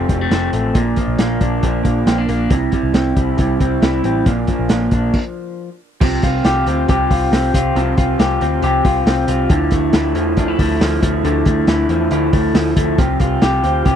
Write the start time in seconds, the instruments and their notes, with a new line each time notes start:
Already playing: clean electric guitar F2 C3 F3 C4
0.08 picked electric bass F1, clean electric guitar F3 G3 A3 C4, kick, closed hi-hat
0.21 clean electric guitar A3
0.30 picked electric bass F1, clean electric guitar F2 C3 F3 A3 C4, snare, closed hi-hat
0.53 picked electric bass A1, clean electric guitar F3 A3 C4, closed hi-hat
0.75 picked electric bass A#1, clean electric guitar A#2 F3 A#3 D4, kick, closed hi-hat
0.96 clean electric guitar F3 A#3 D4, kick, closed hi-hat
1.08 picked electric bass A#1
1.18 picked electric bass A#1, clean electric guitar A#2 F3 A#3 D4, snare, closed hi-hat
1.41 picked electric bass A#1, clean electric guitar F3 A#3 D4, kick, closed hi-hat
1.62 picked electric bass A#1, clean electric guitar A#2 F3 A#3 D4, kick, closed hi-hat
1.83 picked electric bass A#1, clean electric guitar F3 A#3 D4, kick, closed hi-hat
2.06 picked electric bass A#1, clean electric guitar A#2 F3 A#3 C4 D4, snare, closed hi-hat
2.18 clean electric guitar D4
2.28 picked electric bass A#1, clean electric guitar F3 A#3 D4, closed hi-hat
2.50 picked electric bass C2, clean electric guitar C3 G3 C4 E4, kick, closed hi-hat
2.71 clean electric guitar G3 C4 E4, kick, closed hi-hat
2.83 picked electric bass C2
2.93 picked electric bass C2, clean electric guitar C3 G3 C4 E4, snare, closed hi-hat
3.15 picked electric bass C2, clean electric guitar G3 C4 E4, kick, closed hi-hat
3.38 picked electric bass C2, clean electric guitar C3 G3 C4 E4, kick, closed hi-hat
3.60 picked electric bass C2, clean electric guitar G3 C4 E4, kick, closed hi-hat
3.82 picked electric bass C2, clean electric guitar C3 G3 C4 E4, snare, closed hi-hat
4.03 picked electric bass A1, clean electric guitar G3 C4 E4, closed hi-hat
4.26 picked electric bass A#1, clean electric guitar A#2 D3 F3 A#3 D4, kick, closed hi-hat
4.47 clean electric guitar F3 A#3 D4, kick, closed hi-hat
4.59 picked electric bass A#1
4.69 picked electric bass A#1, clean electric guitar A#2 D3 F3 A#3 D4, snare, closed hi-hat
4.91 picked electric bass A#1, clean electric guitar F3 A#3 D4, kick, closed hi-hat
5.13 kick, crash
6.01 picked electric bass C2, clean electric guitar C3 F3 C4 F4 G4, kick, crash
6.22 picked electric bass C2, clean electric guitar C4 F4 G4, kick, hi-hat pedal, open hi-hat
6.44 picked electric bass C2, clean electric guitar F3 C4 F4 G4, snare, hi-hat pedal, open hi-hat
6.66 picked electric bass D2, clean electric guitar C4 F4 G4, hi-hat pedal, open hi-hat
6.88 picked electric bass C2, clean electric guitar C3 F3 C4 F4 G4, kick, hi-hat pedal, open hi-hat
7.10 picked electric bass C2, clean electric guitar C4 F4 G4, kick, hi-hat pedal, open hi-hat
7.32 picked electric bass C2, clean electric guitar F3 C4 F4 G4, snare, hi-hat pedal, open hi-hat
7.54 picked electric bass C2, clean electric guitar C4 F4 G4, kick, hi-hat pedal, open hi-hat
7.75 picked electric bass C2, clean electric guitar C3 F3 C4 F4 G4, hi-hat pedal, open hi-hat
7.97 picked electric bass C2, clean electric guitar C4 F4 G4, kick, hi-hat pedal, open hi-hat
8.18 picked electric bass C2, clean electric guitar F3 C4 F4 G4, snare, hi-hat pedal, open hi-hat
8.40 picked electric bass D2, clean electric guitar C4 F4 G4, hi-hat pedal, open hi-hat
8.62 picked electric bass C2, clean electric guitar C3 F3 C4 F4 G4, hi-hat pedal, open hi-hat
8.83 picked electric bass C2, clean electric guitar C4 F4 G4, kick, hi-hat pedal, open hi-hat
9.06 picked electric bass C2, clean electric guitar F3 C4 F4 G4, snare, hi-hat pedal, open hi-hat
9.27 picked electric bass C2, clean electric guitar C4 F4 G4, hi-hat pedal, open hi-hat
9.49 picked electric bass D2, clean electric guitar D3 F3 A3 E4, kick, hi-hat pedal, open hi-hat
9.71 picked electric bass D2, clean electric guitar F3 A3 E4, kick, hi-hat pedal, open hi-hat
9.93 picked electric bass D2, clean electric guitar D3 F3 A3 E4, snare, hi-hat pedal, open hi-hat
10.15 picked electric bass E2, clean electric guitar F3 A3 E4, hi-hat pedal, open hi-hat
10.37 picked electric bass D2, clean electric guitar D3 F3 A3 D4 E4, kick, hi-hat pedal, open hi-hat
10.48 clean electric guitar E4
10.59 picked electric bass D2, clean electric guitar F3 A3 E4, kick, hi-hat pedal, open hi-hat
10.80 picked electric bass D2, clean electric guitar D3 F3 A3 E4, snare, hi-hat pedal, open hi-hat
11.02 picked electric bass D2, clean electric guitar F3 A3 E4, kick, hi-hat pedal, open hi-hat
11.24 picked electric bass D2, clean electric guitar D3 F3 A3 E4, hi-hat pedal, open hi-hat
11.46 picked electric bass D2, clean electric guitar F3 A3 E4, kick, hi-hat pedal, open hi-hat
11.67 picked electric bass D2, clean electric guitar D3 F3 A3 E4, snare, hi-hat pedal, open hi-hat
11.89 picked electric bass E2, clean electric guitar F3 A3 E4, hi-hat pedal, open hi-hat
12.11 picked electric bass D2, clean electric guitar D3 F3 A3 E4, hi-hat pedal, open hi-hat
12.33 picked electric bass D2, clean electric guitar F3 A3 E4, kick, hi-hat pedal, open hi-hat
12.54 picked electric bass D2, clean electric guitar D3 F3 A3 E4, snare, hi-hat pedal, open hi-hat
12.76 picked electric bass D2, clean electric guitar F3 A3 E4, kick, hi-hat pedal, open hi-hat
12.98 picked electric bass C2, clean electric guitar C3 F3 C4 F4 G4, kick, hi-hat pedal, open hi-hat
13.20 picked electric bass C2, clean electric guitar C4 F4 G4, kick, hi-hat pedal, open hi-hat
13.42 picked electric bass C2, clean electric guitar F3 C4 F4 G4, snare, hi-hat pedal, open hi-hat
13.63 picked electric bass D2, clean electric guitar C4 F4 G4, hi-hat pedal, open hi-hat
13.85 picked electric bass C2, clean electric guitar C3 F3 C4 F4 G4, kick, hi-hat pedal, open hi-hat